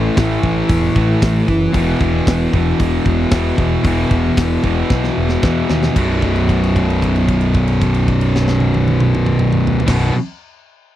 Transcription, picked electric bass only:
0.17 0.35 A1 loud
0.43 0.61 A1 medium
0.70 0.88 E1 medium
0.96 1.14 A1 medium
1.23 1.41 A1 medium
1.49 1.67 F#1 medium
1.74 1.93 E1 medium
2.02 2.20 E1 medium
2.28 2.46 E1 medium
2.54 2.72 E1 medium
2.80 2.98 E1 loud
3.06 3.24 E1 medium
3.33 3.51 E1 medium
3.58 3.76 E1 medium
3.86 4.04 E1 medium
4.11 4.30 E1 medium
4.38 4.56 E1 medium
4.64 4.82 E1 medium
4.91 5.09 B1 medium
5.18 5.36 E1 medium
5.43 5.62 E2 medium
5.70 5.88 D#2 medium
5.97 9.78 B0 medium
9.88 10.10 B0 medium

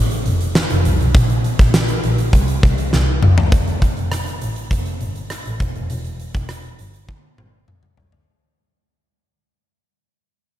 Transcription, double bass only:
0.00 0.18 A1 loud
0.26 0.48 F1 medium
0.70 0.81 F1 medium
0.85 0.96 C2 medium
1.00 1.11 B1 medium
1.15 1.37 A#1 loud
1.59 1.82 A#1 loud
2.04 2.26 A#1 medium
2.33 2.56 C2 loud
2.63 2.85 C2 loud
2.93 3.15 C2 loud
3.22 3.34 F#1 medium
3.52 3.74 F1 medium
3.97 4.19 F1 medium
4.42 4.64 A1 medium
4.71 4.93 F1 medium
5.01 5.23 G1 medium
5.46 5.57 A1 medium
5.60 5.71 E1 medium
5.76 5.87 F1 medium
5.90 6.01 E1 loud
6.35 6.46 E1 medium
6.79 7.12 G1 medium
7.39 7.61 G1 medium
7.98 8.20 F1 medium

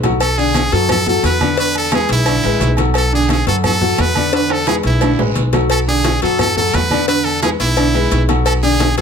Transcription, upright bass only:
0.00 0.66 B1 medium
0.72 1.20 F#2 medium
1.23 2.04 E2 medium
2.09 2.41 B1 loud
2.44 2.60 A1 medium
2.61 3.41 B1 loud
3.47 3.95 F#2 loud
3.98 4.79 E2 medium
4.84 5.16 B1 medium
5.19 5.35 A1 medium
5.37 6.17 B1 medium
6.22 6.70 F#2 medium
6.74 7.54 E2 medium
7.60 8.08 B1 medium
8.11 8.92 B1 loud
8.98 9.01 F#2 loud

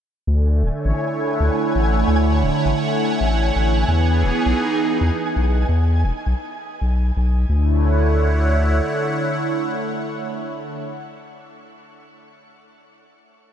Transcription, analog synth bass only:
0.27 0.64 D2 loud
0.63 0.70 D1 medium
0.85 0.92 A1 loud
1.40 1.50 D2 medium
1.75 2.04 A1 medium
2.08 2.44 D2 loud
2.43 2.50 D1 medium
2.66 2.73 A1 loud
3.21 3.51 A1 medium
3.56 3.84 A1 loud
3.88 4.25 E2 loud
4.23 4.31 E1 medium
4.46 4.53 B1 loud
5.01 5.10 E2 medium
5.36 5.65 B1 medium
5.69 6.05 E2 loud
6.04 6.11 E1 medium
6.26 6.34 B1 loud
6.81 7.11 B1 medium
7.17 7.45 B1 medium
7.49 8.81 D2 loud

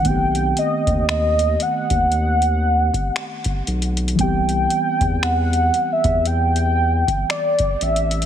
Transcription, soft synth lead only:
0.07 0.58 G5 loud
0.59 1.06 D#5 loud
1.10 1.64 D#5 loud
1.62 3.68 F#5 loud
4.20 5.24 G5 loud
5.23 5.94 F#5 loud
5.92 6.28 E5 loud
6.27 7.30 G5 loud
7.30 7.84 D5 medium
7.83 8.26 E5 medium

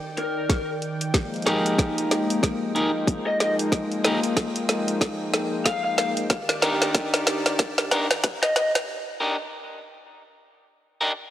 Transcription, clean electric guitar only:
1.46 2.72 D#4 medium
1.46 2.72 G4 medium
1.46 2.72 G#4 medium
1.46 2.72 A#4 medium
2.75 2.90 D#4 medium
2.75 2.90 G4 medium
2.75 2.90 G#4 medium
2.75 2.90 A#4 medium
4.04 4.19 D#4 medium
4.04 4.19 G4 medium
4.04 4.19 G#4 medium
4.04 4.19 A#4 loud
6.62 7.89 D4 medium
6.62 7.89 D#4 medium
6.62 7.89 G4 medium
6.62 7.89 A#4 medium
7.91 8.06 D4 medium
7.91 8.07 D#4 medium
7.91 8.07 G4 medium
7.91 8.06 A#4 medium
9.20 9.36 D4 medium
9.20 9.35 D#4 medium
9.20 9.35 G4 medium
9.20 9.36 A#4 loud
11.01 11.11 D4 medium
11.01 11.11 D#4 medium
11.01 11.11 G4 medium
11.01 11.11 A#4 loud

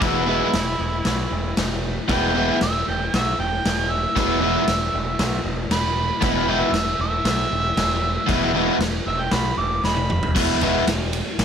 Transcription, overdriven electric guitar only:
0.01 0.22 E2 loud
0.01 0.23 B2 medium
0.01 0.23 E3 loud
0.01 0.23 G#3 medium
0.01 0.23 B3 loud
0.01 0.24 E4 loud
0.26 0.48 E2 loud
0.26 0.48 B2 medium
0.26 0.49 E3 medium
0.26 0.49 G#3 medium
0.26 0.49 B3 medium
0.26 0.50 E4 loud
2.08 2.30 E2 medium
2.08 2.30 B2 medium
2.08 2.30 E3 medium
2.08 2.31 G#3 medium
2.08 2.31 B3 medium
2.08 2.31 E4 loud
2.34 2.55 E2 loud
2.34 2.56 B2 loud
2.34 2.56 E3 loud
2.34 2.56 G#3 loud
2.34 2.57 B3 loud
2.34 2.57 E4 loud
4.16 4.37 E2 medium
4.16 4.37 B2 medium
4.16 4.37 E3 medium
4.16 4.38 G#3 medium
4.16 4.38 B3 loud
4.16 4.38 E4 loud
4.40 4.62 E2 loud
4.40 4.63 B2 loud
4.40 4.63 E3 loud
4.40 4.63 G#3 loud
4.40 4.63 B3 medium
4.40 4.64 E4 loud
6.21 6.43 E2 medium
6.21 6.43 B2 loud
6.21 6.44 E3 loud
6.21 6.44 G#3 medium
6.21 6.44 B3 loud
6.25 6.45 E4 loud
6.47 6.69 E2 medium
6.47 6.69 B2 medium
6.47 6.69 E3 medium
6.47 6.70 G#3 loud
6.47 6.70 B3 loud
6.47 6.70 E4 loud
8.27 8.49 E2 loud
8.27 8.49 B2 medium
8.27 8.50 E3 loud
8.27 8.50 G#3 medium
8.27 8.50 B3 medium
8.27 8.50 E4 medium
8.53 8.75 E2 medium
8.53 8.75 B2 loud
8.53 8.76 E3 loud
8.53 8.76 G#3 loud
8.53 8.76 B3 loud
8.53 8.76 E4 loud
10.35 10.56 E2 medium
10.35 10.57 B2 medium
10.35 10.57 E3 loud
10.35 10.57 G#3 loud
10.35 10.58 B3 medium
10.35 10.58 E4 loud
10.61 10.82 E2 medium
10.61 10.82 B2 medium
10.61 10.83 E3 medium
10.61 10.83 G#3 loud
10.61 10.83 B3 loud
10.61 10.84 E4 loud

